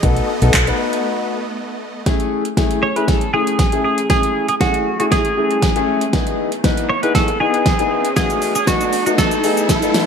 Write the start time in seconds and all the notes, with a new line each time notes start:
Already playing: D#5
0.03 B1 A3 B3 D#4 F#4 A4, kick, closed hi-hat
0.17 closed hi-hat
0.42 B1 B3 D#4 F#4 A4, closed hi-hat
0.54 B1, kick, clap, closed hi-hat
0.67 B3 D#4 F#4 B4, closed hi-hat
0.93 closed hi-hat
2.06 A3 C#4 E4 G#4, kick, snare, closed hi-hat, riser
2.20 closed hi-hat
2.45 closed hi-hat
2.57 A3 C#4 E4 G#4, kick, snare, closed hi-hat
2.71 closed hi-hat
2.83 C#5
2.96 A3 C#4 E4 G#4 B4, closed hi-hat
3.08 A4, kick, snare, closed hi-hat
3.21 closed hi-hat
3.33 A3 C#4 E4 G#4
3.47 closed hi-hat
3.59 kick, snare, closed hi-hat
3.72 A3 C#4 E4 G#4, closed hi-hat
3.85 G#4
3.98 closed hi-hat
4.10 A3 C#4 E4 G#4, kick, snare, closed hi-hat
4.23 closed hi-hat
4.48 G#4, closed hi-hat
4.60 A3 C#4 E4 F#4 G#4, kick, snare, closed hi-hat
4.74 closed hi-hat
5.00 A3 C#4 E4 F#4 G#4, closed hi-hat
5.12 G#4, kick, snare, closed hi-hat
5.25 closed hi-hat
5.37 A3 C#4 E4 G#4
5.51 closed hi-hat
5.62 kick, snare, closed hi-hat
5.76 A3 C#4 E4 G#4, closed hi-hat
6.01 closed hi-hat
6.13 B3 D#4 E4 G#4, kick, snare, closed hi-hat
6.27 closed hi-hat
6.52 closed hi-hat
6.64 B3 D#4 E4 B4, kick, snare, closed hi-hat
6.77 closed hi-hat
6.89 C#5
7.03 B3 D#4 E4 G#4 B4, closed hi-hat
7.15 A4, kick, snare, closed hi-hat
7.28 closed hi-hat
7.40 B3 D#4 E4 G#4
7.54 closed hi-hat
7.66 kick, snare, closed hi-hat
7.79 B3 D#4 E4 G#4, closed hi-hat
8.05 closed hi-hat
8.16 A3 B3 D#4 F#4 G#4, kick, snare, closed hi-hat, shaker
8.30 closed hi-hat, shaker
8.42 open hi-hat, shaker
8.55 G#4, closed hi-hat, shaker
8.67 A3 B3 D#4 F#4, kick, snare, closed hi-hat, shaker
8.81 closed hi-hat, shaker
8.93 open hi-hat, shaker
9.06 A3 B3 D#4 F#4, closed hi-hat, shaker
9.18 A4, kick, snare, closed hi-hat, shaker
9.31 closed hi-hat, shaker
9.44 A3 B3 D#4 G#4, open hi-hat, shaker
9.57 closed hi-hat, shaker
9.69 kick, snare, closed hi-hat, shaker
9.82 A3 B3 D#4 A4, closed hi-hat, shaker
9.94 snare, open hi-hat, shaker